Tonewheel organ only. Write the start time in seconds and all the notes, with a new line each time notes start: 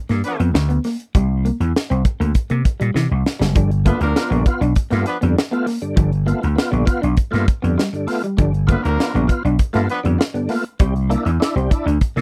3.56 G2 D3
3.86 A3 B3 F4
4.03 B3 F4
4.17 B3 F4
4.32 G2 D3
4.47 B3 F4
4.91 A3 B3 F4
5.22 G2 D3
5.52 A3 B3 F4
5.82 G2 D3
5.97 G2 D3
6.26 A3 B3 F4
6.41 B3 F4
6.56 B3 F4
6.71 G2 D3
6.86 B3 F4
7.31 A3 B3 F4
7.63 G2 D3
7.77 B3 F4
7.93 G2 D3
8.07 A3 B3 F4
8.37 G2 D3
8.67 A3 B3 F4
8.82 B3 F4
8.97 B3 F4
9.14 G2 D3
9.27 B3 F4
9.73 A3 B3 F4
10.03 G2 D3
10.18 B3 F4
10.34 G2 D3
10.49 A3 B3 F4
10.80 C3 G3
11.10 A#3 D4 E4
11.25 D4 E4
11.40 D4 E4
11.56 C3 G3
11.71 D4 E4
12.17 A#3 D4 E4